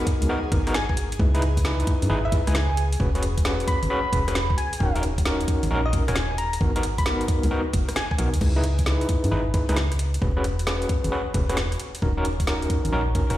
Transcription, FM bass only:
0.22 C#2
0.52 G#1
1.20 C#2
2.02 F#2
2.10 G#1
2.47 C#2
3.00 E1
3.83 G#1
4.13 E1
4.80 D#1
5.63 G#1
5.71 A#1
6.08 D#1
6.61 G#1
7.44 C#2
7.74 F#1
8.19 B1
8.34 D#2
8.41 C#2
9.24 F#2
9.32 G#1
9.69 C#2
10.22 E1
11.05 G#1
11.35 E1
12.02 D#1
12.85 G#1
12.93 A#1
13.30 D#1

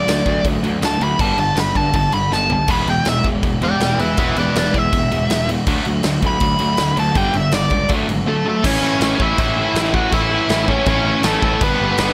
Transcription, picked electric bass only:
0.08 D2
0.26 D2
0.44 D2
0.63 D2
0.82 D2
1.01 D2
1.19 G1
1.37 G1
1.56 G1
1.75 G2
1.94 G1
2.12 G1
2.31 G1
2.68 E1
2.86 E1
3.05 E1
3.24 E1
3.43 E1
3.61 E1
3.80 E1
3.98 E1
4.18 E1
4.36 E1
4.55 E1
4.74 E2
4.93 E1
5.12 E1
5.30 E1
5.67 D2
5.86 D2
6.04 D2
6.23 D2
6.41 D2
6.59 D2
6.78 D2
6.97 D2
7.15 G1
7.34 G1
7.52 G1
7.71 C#2
7.90 D2
8.08 G#1
8.64 A1
8.83 A1
9.01 A1
9.20 A1
9.38 A1
9.75 A1
10.12 A1
10.50 A1
10.86 A1
11.24 A1
11.42 A1
11.61 G1
11.80 G1
11.98 G1

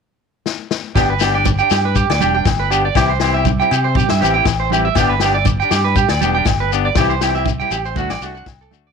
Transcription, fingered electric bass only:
0.95 G1
1.71 G2
2.10 D2
2.21 E1
2.45 G1
2.95 C2
3.71 C3
4.11 G2
4.23 A1
4.45 A1
4.96 G1
5.71 G2
6.10 D2
6.21 E1
6.46 G1
6.95 C2
7.71 A1
7.96 D2
8.08 A1
8.21 C2
8.46 C2
8.72 D2

